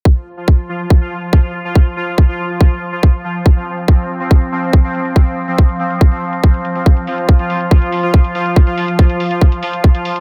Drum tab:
HH |-x-x-x-----x--xx|-x-----x-x-x-xxx|-x-x-x-x-x-x-xxx|xx-xxxxxxx-xxxxx|
BD |o---o---o---o---|o---o---o---o---|o---o---o---o---|o---o---o---o---|

HH |xxoxxxoxxxoxxxox|xxoxxxoxxxoxxxox|
BD |o---o---o---o---|o---o---o---o---|